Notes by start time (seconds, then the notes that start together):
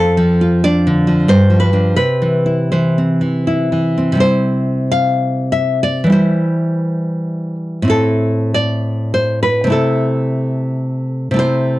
Already playing: F2 A4
0.17 F3
0.41 F4
0.64 D4 D5
0.87 D3
1.07 F3
1.28 G2 C5
1.50 F3
1.60 B4
1.73 F3 D4
1.96 C3 B4
2.22 E3
2.46 E4
2.72 E3 C5
2.98 C4
3.21 E3
3.47 E4
3.72 E3
3.98 C4
4.12 C3 G3
4.17 E4 C5
4.92 F5
5.52 E5
5.83 D5
6.04 E3 G3
6.10 E4 C5
7.82 A2 C4
7.88 E4 A4
8.54 D5
9.14 C5
9.43 B4
9.64 C3 A3
9.70 E4 A4
11.31 C3 A3
11.36 E4 C5